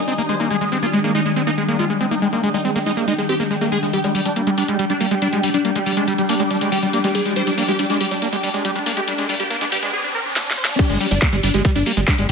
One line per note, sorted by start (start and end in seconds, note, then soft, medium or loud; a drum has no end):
0.00 3.93 D#3 medium
0.00 3.92 G3 medium
0.00 3.92 D4 medium
0.00 1.66 G#5 medium
0.00 3.93 D#6 medium
0.08 0.14 C4 medium
0.08 0.14 D#4 medium
0.18 0.22 A#3 loud
0.18 0.25 D#4 medium
0.29 0.35 G#3 medium
0.29 0.36 C5 medium
0.40 0.49 A#3 medium
0.40 0.46 D#4 medium
0.51 0.56 G#3 loud
0.51 0.57 G#4 medium
0.61 0.65 G#3 medium
0.61 0.68 G#3 medium
0.72 0.79 G#3 medium
0.72 0.78 C4 medium
0.83 0.86 A#3 loud
0.83 0.89 F4 medium
0.93 0.99 G#3 medium
0.93 1.00 G#3 medium
1.04 1.11 G#3 medium
1.04 1.13 A#3 medium
1.15 1.21 G#3 loud
1.15 1.21 D#4 medium
1.26 1.29 G#3 medium
1.26 1.32 G#3 medium
1.36 1.43 G#3 medium
1.36 1.42 C4 medium
1.47 1.51 A#3 loud
1.47 1.54 D#4 medium
1.53 9.93 G5 medium
1.58 1.64 G#3 medium
1.68 1.75 G#3 medium
1.68 1.77 A#3 medium
1.79 1.85 G#3 loud
1.79 1.86 F4 medium
1.90 1.93 G#3 medium
1.90 1.96 G#3 medium
2.01 2.07 G#3 medium
2.01 2.07 C4 medium
2.11 2.15 A#3 loud
2.11 2.18 D#4 loud
2.22 2.28 G#3 medium
2.22 2.29 G#3 medium
2.33 2.39 G#3 medium
2.33 2.42 A#3 medium
2.43 2.49 G#3 loud
2.43 2.50 G#3 medium
2.54 2.58 G#3 medium
2.54 2.61 D#4 loud
2.65 2.71 G#3 medium
2.65 2.71 C4 medium
2.76 2.82 G#3 medium
2.76 2.79 A#3 loud
2.86 2.92 G#3 medium
2.86 2.93 D#4 medium
2.97 3.04 G#3 medium
2.97 3.06 A#3 medium
3.08 3.14 G#3 loud
3.08 3.14 D#4 medium
3.18 3.22 G#3 medium
3.18 3.25 G#3 medium
3.29 3.35 C4 medium
3.29 3.36 G4 loud
3.40 3.46 G#3 medium
3.40 3.43 A#3 loud
3.51 3.56 G#3 medium
3.51 3.57 G#3 medium
3.61 3.68 G#3 medium
3.61 3.70 A#3 medium
3.72 3.78 G#3 loud
3.72 3.79 G#4 medium
3.83 3.86 G#3 medium
3.83 3.89 G#3 medium
3.93 3.99 G3 medium
3.93 9.93 G3 medium
3.93 9.93 D4 medium
3.93 4.00 G4 loud
3.93 closed hi-hat medium
3.93 riser medium
4.04 4.11 G3 medium
4.04 4.13 G#3 medium
4.04 closed hi-hat medium
4.12 4.21 G3 loud
4.12 4.21 G3 medium
4.12 9.93 G4 medium
4.12 open hi-hat loud
4.25 4.29 G3 medium
4.25 4.32 D4 medium
4.25 closed hi-hat medium
4.36 4.43 G3 medium
4.36 4.42 A#3 medium
4.36 closed hi-hat medium
4.47 4.54 G3 medium
4.47 4.51 G#3 loud
4.47 closed hi-hat soft
4.58 4.64 G3 medium
4.58 4.64 D4 medium
4.58 open hi-hat loud
4.68 4.75 G3 medium
4.68 4.77 G#3 medium
4.68 closed hi-hat medium
4.79 4.85 G3 loud
4.79 4.86 G3 medium
4.79 closed hi-hat medium
4.90 4.93 G3 medium
4.90 4.96 D4 loud
4.90 closed hi-hat medium
5.01 5.07 G3 medium
5.01 5.07 A#3 medium
5.01 open hi-hat loud
5.11 5.18 G3 medium
5.11 5.15 G#3 loud
5.11 closed hi-hat medium
5.22 5.28 G3 medium
5.22 5.29 D4 medium
5.22 closed hi-hat medium
5.33 5.39 G3 medium
5.33 5.42 G#3 medium
5.33 closed hi-hat medium
5.43 5.49 G3 loud
5.43 5.50 G3 medium
5.43 open hi-hat loud
5.54 5.58 G3 medium
5.54 5.61 D4 medium
5.54 closed hi-hat medium
5.65 5.71 G3 medium
5.65 5.71 A#3 medium
5.65 closed hi-hat medium
5.76 5.82 G3 medium
5.76 5.79 G#3 loud
5.76 closed hi-hat medium
5.86 5.92 G3 medium
5.86 5.93 G3 medium
5.86 open hi-hat loud
5.96 6.06 G#3 medium
5.96 6.04 D4 medium
5.96 9.93 D6 medium
5.96 closed hi-hat soft
6.08 6.14 G3 loud
6.08 6.14 G3 medium
6.08 closed hi-hat medium
6.18 6.22 G3 medium
6.18 6.25 G3 medium
6.18 closed hi-hat medium
6.29 6.35 A#3 medium
6.29 6.36 D4 medium
6.29 open hi-hat loud
6.40 6.46 G3 medium
6.40 6.43 G#3 loud
6.40 closed hi-hat medium
6.51 6.57 G3 medium
6.51 6.57 D4 medium
6.51 closed hi-hat medium
6.61 6.68 G3 medium
6.61 6.70 G#3 medium
6.61 closed hi-hat medium
6.72 6.78 G3 loud
6.72 6.79 G4 medium
6.72 open hi-hat loud
6.83 6.86 G3 medium
6.83 6.89 G3 medium
6.83 closed hi-hat medium
6.93 7.00 G3 medium
6.93 6.99 A#3 medium
6.93 closed hi-hat medium
7.04 7.11 G3 medium
7.04 7.08 G#3 loud
7.04 closed hi-hat medium
7.15 7.21 G3 medium
7.15 7.21 G#4 medium
7.15 open hi-hat loud
7.26 7.32 G3 medium
7.26 7.34 G#3 medium
7.26 closed hi-hat medium
7.36 7.42 G3 loud
7.36 7.43 C5 medium
7.36 closed hi-hat medium
7.47 7.51 G3 medium
7.47 7.54 D4 medium
7.47 closed hi-hat medium
7.58 7.64 A#3 medium
7.58 7.64 D4 medium
7.58 open hi-hat loud
7.68 7.72 G#3 loud
7.68 7.75 G4 medium
7.68 closed hi-hat soft
7.79 7.85 G3 medium
7.79 7.86 D4 medium
7.79 closed hi-hat medium
7.90 7.99 G#3 medium
7.90 7.96 D4 medium
7.90 closed hi-hat medium
8.01 8.06 G3 loud
8.01 8.07 G4 loud
8.01 open hi-hat loud
8.11 8.15 G3 medium
8.11 8.18 D4 medium
8.11 closed hi-hat soft
8.22 8.28 A#3 medium
8.22 8.29 D4 medium
8.22 closed hi-hat medium
8.33 8.36 G#3 loud
8.33 8.39 G4 medium
8.33 closed hi-hat medium
8.43 8.49 G3 medium
8.43 8.50 D4 medium
8.43 open hi-hat loud
8.54 8.63 G#3 medium
8.54 8.61 D4 medium
8.54 closed hi-hat medium
8.65 8.71 G3 loud
8.65 8.71 G4 medium
8.65 closed hi-hat medium
8.76 8.79 G3 medium
8.76 8.82 D4 medium
8.76 closed hi-hat soft
8.86 8.92 A#3 medium
8.86 8.93 D4 medium
8.86 open hi-hat loud
8.97 9.01 G#3 loud
8.97 9.04 G4 medium
8.97 closed hi-hat medium
9.08 9.14 G3 medium
9.08 9.14 D4 medium
9.08 closed hi-hat medium
9.18 9.27 G#3 medium
9.18 9.25 D4 medium
9.18 closed hi-hat soft
9.29 9.35 G3 loud
9.29 9.36 D4 medium
9.29 open hi-hat loud
9.40 9.43 G3 medium
9.40 9.46 G4 medium
9.40 closed hi-hat medium
9.50 9.56 A#3 medium
9.50 9.57 D4 medium
9.50 closed hi-hat medium
9.61 9.65 G#3 loud
9.61 9.68 D4 medium
9.61 closed hi-hat medium
9.72 9.78 G3 medium
9.72 9.78 G4 medium
9.72 open hi-hat loud
9.83 9.92 G#3 medium
9.83 9.89 D4 medium
9.83 closed hi-hat medium
9.93 10.00 G#4 medium
10.04 10.11 D4 medium
10.15 10.21 A#4 loud
10.26 10.32 D4 medium
10.36 10.43 D4 medium
10.36 snare medium
10.47 10.54 D4 medium
10.47 snare medium
10.58 10.64 C5 medium
10.65 10.75 D4 medium
10.65 snare loud
10.79 10.85 G3 medium
10.79 12.32 G3 medium
10.79 12.32 D4 medium
10.79 10.86 G4 loud
10.79 kick loud
10.79 closed hi-hat medium
10.79 crash loud
10.90 10.97 G1 medium
10.90 10.96 G3 medium
10.90 10.99 G#3 medium
10.90 closed hi-hat medium
11.00 11.06 G3 loud
11.00 11.07 G3 medium
11.00 open hi-hat loud
11.11 11.19 G1 medium
11.11 11.15 G3 medium
11.11 11.18 D4 medium
11.11 closed hi-hat medium
11.22 11.29 G3 medium
11.22 11.28 A#3 medium
11.22 kick loud
11.22 clap loud
11.22 closed hi-hat medium
11.33 11.40 G1 medium
11.33 11.39 G3 medium
11.33 11.36 G#3 loud
11.33 closed hi-hat medium
11.43 11.51 G1 medium
11.43 11.49 G3 medium
11.43 11.50 D4 loud
11.43 open hi-hat loud
11.54 11.62 G1 medium
11.54 11.61 G3 medium
11.54 11.63 G#3 medium
11.54 closed hi-hat medium
11.65 11.71 G3 loud
11.65 11.71 G3 medium
11.65 kick loud
11.65 closed hi-hat medium
11.75 11.83 G1 medium
11.75 11.79 G3 medium
11.75 11.82 D4 loud
11.75 closed hi-hat medium
11.86 11.93 G3 medium
11.86 11.92 A#3 medium
11.86 open hi-hat loud
11.97 12.04 G1 medium
11.97 12.04 G3 medium
11.97 12.01 G#3 loud
11.97 closed hi-hat medium
12.08 12.14 G3 medium
12.08 12.14 D4 loud
12.08 kick loud
12.08 clap loud
12.08 closed hi-hat medium
12.18 12.26 G1 medium
12.18 12.25 G3 medium
12.18 12.27 G#3 medium
12.18 closed hi-hat medium